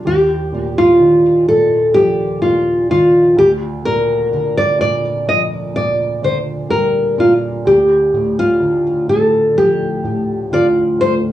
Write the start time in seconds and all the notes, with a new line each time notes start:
0.05 D#2 G4
0.53 A#2
0.78 F4
1.00 D#3
1.48 A#2 A4
1.94 F3 G4
2.42 A#2 F4
2.90 D#3 F4
3.36 D2 G4
3.85 A#2 A#4
4.32 D3
4.57 D5
4.79 A#2 D5
5.27 F3 D#5
5.74 A#2 D5
6.22 D3 C5
6.69 G3 A#4
7.18 A#2 F4
7.65 D2 G4
8.13 A2
8.39 F4
8.60 D3
9.08 A2 A4
9.55 F3 G4
10.04 A2
10.51 D3 F4 D5
10.99 A3 C5